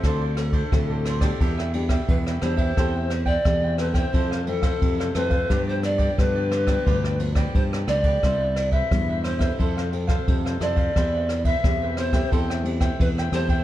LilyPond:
<<
  \new Staff \with { instrumentName = "Cavaquinho" } { \time 4/4 \key c \major \tempo 4 = 88 <f' a' c'' d''>16 <a' c'' d''>16 r16 <a' c'' d''>8 <a' c'' d''>16 <f' a' c'' d''>16 <a' c'' d''>16 <d' g' b' e''>16 <g' b' e''>16 r16 <g' b' e''>8 <g' b' e''>16 <d' g' b' e''>16 <g' b' e''>16 | <a' c'' e'' g''>16 <c'' e'' g''>16 r16 <c'' e'' g''>8 <c'' e'' g''>16 <a' c'' e'' g''>16 <c'' e'' g''>16 <e' a' c'' f''>16 <a' c'' f''>16 r16 <a' c'' f''>8 <a' c'' f''>16 <e' a' c'' f''>16 <a' c'' f''>16 | <f' g' b' d''>16 <g' b' d''>16 r16 <g' b' d''>8 <g' b' d''>16 <f' g' b' d''>16 <g' b' d''>16 <f' g' b' d''>16 <g' b' d''>16 r16 <g' b' d''>8 <g' b' d''>16 <f' g' b' d''>16 <g' b' d''>16 | <e' b' c'' e''>16 <b' c'' e''>16 r16 <b' c'' e''>8 <b' c'' e''>16 <e' b' c'' e''>16 <b' c'' e''>16 <e' a' c'' f''>16 <a' c'' f''>16 r16 <a' c'' f''>8 <a' c'' f''>16 <e' a' c'' f''>16 <a' c'' f''>16 |
<e' b' c'' e''>16 <b' c'' e''>16 r16 <b' c'' e''>8 <b' c'' e''>16 <e' b' c'' e''>16 <b' c'' e''>16 <a' c'' e'' g''>16 <c'' e'' g''>16 r16 <c'' e'' g''>8 <c'' e'' g''>16 <a' c'' e'' g''>16 <c'' e'' g''>16 | }
  \new Staff \with { instrumentName = "Pan flute" } { \time 4/4 \key c \major a'2~ a'8 r8 b'8 c''8~ | c''8. d''8. b'16 c''8. a'4 b'8~ | b'16 c''16 d''8 b'4. r8 c''8 d''8~ | d''8. e''8. c''8 a'8 r8 c''8 d''8~ |
d''8. e''8. c''8 a'8 r8 b'8 c''8 | }
  \new Staff \with { instrumentName = "Nylon-string guitar" } { \time 4/4 \key c \major << { <c' f' a'>8. r16 <c' f' a'>8. <b d' g'>8. <b d' g'>8. r16 <b d' g'>8 | <a c' g'>8. r16 <a c' g'>8. <e a c'>8. <e a c'>4 <e a c'>16 r16 | <f b d'>4 <f b d'>8. <f b d'>8. <f b d'>4 <f b d'>8 | <g b e'>8. r16 <g b e'>8. <c' e' a'>8. <c' a'>4 <c' e' a'>8 |
<b c' g'>8. r16 <b c' g'>8. <a c' g'>8. <a c' g'>4 <a c' g'>16 r16 | } \\ { d4 a,4 e4 b,4 | e4 e4 f,4 c4 | g,4 d4 g,4 r4 | c4 g,4 f4 c4 |
e4 e4 e4 e4 | } >> }
  \new Staff \with { instrumentName = "Fingered electric bass" } { \clef bass \time 4/4 \key c \major d,4 d,4 e,4 e,8 e,8 | e,4 e,4 f,4 f,8 f,8 | g,4 g,4 d,4 g,8 des,8 | c,4 e,4 f,4 f,8 f,8 |
e,4 e,4 e,4 e,8 e,8 | }
  \new DrumStaff \with { instrumentName = "Drums" } \drummode { \time 4/4 <bd cymr ss>8 <cymr ss>16 <bd cymr>16 <bd cymr ss>8 <cymr ss>16 <bd cymr ss>16 <bd cymr>16 ss16 cymr16 <bd cymr ss>16 <bd cymr>16 ss16 <cymr ss>16 <bd cymr>16 | <bd cymr ss>8 <cymr ss>16 <bd cymr>16 <bd cymr ss>8 <cymr ss>16 <bd cymr ss>16 <bd cymr>16 ss16 cymr16 <bd cymr ss>16 <bd cymr>16 ss16 <cymr ss>16 <bd cymr>16 | <bd cymr ss>8 <cymr ss>16 <bd cymr>16 <bd cymr ss>8 <cymr ss>16 <bd cymr ss>16 <bd cymr>16 ss16 cymr16 <bd cymr ss>16 <bd cymr>16 ss16 <cymr ss>16 <bd cymr>16 | <bd cymr ss>8 <cymr ss>16 <bd cymr>16 <bd cymr ss>8 <cymr ss>16 <bd cymr ss>16 <bd cymr>16 ss16 cymr16 <bd cymr ss>16 <bd cymr>16 ss16 <cymr ss>16 <bd cymr>16 |
<bd cymr ss>8 <cymr ss>16 <bd cymr>16 <bd cymr ss>8 <cymr ss>16 <bd cymr ss>16 <bd cymr>16 ss16 cymr16 <bd cymr ss>16 <bd cymr>16 ss16 <cymr ss>16 <bd cymr>16 | }
>>